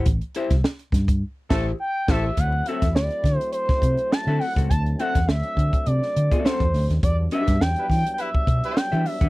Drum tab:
CC |----------x---x-|----------------|----------------|----------------|
HH |xxxx-xxx--------|x-xx-xxxx-xx--ox|xxxx-xxxx-xx-xox|x-xx-xoxx-xx-xox|
SD |---oo-o---o---o-|---oo-o--o--o---|---oo----o--o-oo|---oo-o-----o---|
BD |o--o--oo--o---o-|o--o--o--oo----o|o--o--oo---o-o--|o--o--o--oo----o|